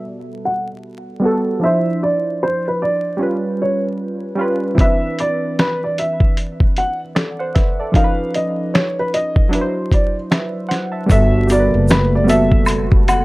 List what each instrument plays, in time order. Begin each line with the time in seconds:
Already playing: synth keys G3 B3 F#4 A4
0.45 upright piano F#5
1.20 synth keys G3 B3 F#4
1.26 synth keys A4
1.60 synth keys F3 D4 E4, upright piano E5
1.65 synth keys C5
2.03 upright piano D5
2.43 upright piano C5
2.68 upright piano B4
2.82 upright piano D5
3.17 synth keys G3 C#4 F4
3.23 synth keys B4
3.62 upright piano C#5
4.35 synth keys G3 C#4 F4
4.41 synth keys B4
4.74 synth keys E3 C4 D4, kick
4.79 synth keys B4, upright piano E5, closed hi-hat
5.19 upright piano D5, closed hi-hat
5.59 upright piano B4, finger snap, snare, closed hi-hat
5.84 upright piano D5
5.98 upright piano E5, closed hi-hat
6.20 kick
6.37 closed hi-hat
6.60 kick
6.77 upright piano F#5, closed hi-hat
7.15 synth keys A4 D5, finger snap, snare, closed hi-hat
7.39 synth keys C5 F#5
7.55 synth keys B4 E5, kick, snare, closed hi-hat
7.80 synth keys A4 D5
7.92 synth keys F3 C#4 D#4, kick, closed hi-hat
7.96 synth keys A#4, upright piano F5
8.04 synth keys B4
8.34 upright piano D#5, closed hi-hat
8.74 upright piano C#5, finger snap, snare, closed hi-hat
8.99 upright piano B4
9.14 upright piano D#5, closed hi-hat
9.36 kick
9.49 synth keys F#3 D4 E4, closed hi-hat
9.55 synth keys B4
9.61 synth keys C5
9.91 upright piano D5, kick, closed hi-hat
10.31 synth keys B4 E5, finger snap, snare, closed hi-hat
10.69 synth keys C5 F#5, snare, closed hi-hat
10.92 synth keys E5 A5
11.06 upright bass G1, ambient pad B2 A3 F#4, synth keys G3 B3 F#4, kick, shaker
11.11 synth keys A4, upright piano E5, closed hi-hat
11.47 synth keys G3 B3 F#4, closed hi-hat, shaker
11.51 synth keys A#4, upright piano D5
11.59 synth keys B4
11.74 upright bass F#1
11.88 upright piano B4, finger snap, snare, closed hi-hat, shaker
12.15 upright piano D5
12.24 synth keys G3 B3 F#4
12.29 synth keys A4, upright piano E5, closed hi-hat, shaker
12.52 kick
12.66 closed hi-hat, high woodblock, shaker
12.92 kick
13.08 upright piano F#5, closed hi-hat, high woodblock, shaker